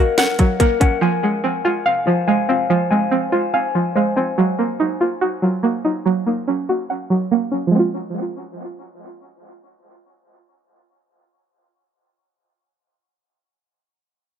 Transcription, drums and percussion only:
0.18 finger snap, snare, closed hi-hat
0.39 kick, closed hi-hat
0.60 kick, closed hi-hat
0.81 kick, closed hi-hat

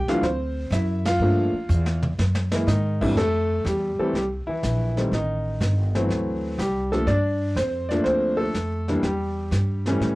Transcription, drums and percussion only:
0.08 snare
0.23 brush sweep, snare
0.72 snare, hi-hat pedal
1.05 snare, ride
1.21 brush sweep
1.70 hi-hat pedal
1.86 snare
2.03 mid tom
2.19 snare
2.35 snare
2.52 snare
2.68 snare, hi-hat pedal
3.02 kick, crash
3.17 brush sweep, snare
3.66 snare, hi-hat pedal
4.15 brush sweep, snare
4.63 snare, hi-hat pedal
4.97 snare
5.13 brush sweep, snare
5.61 snare, hi-hat pedal
5.95 snare
6.10 brush sweep, snare
6.59 snare, hi-hat pedal
6.93 snare
7.08 brush sweep, snare
7.57 snare, hi-hat pedal
7.91 snare
8.06 brush sweep, snare
8.54 snare, hi-hat pedal
8.88 snare
9.03 brush sweep, snare
9.52 snare, hi-hat pedal
9.86 snare
10.01 brush sweep, snare

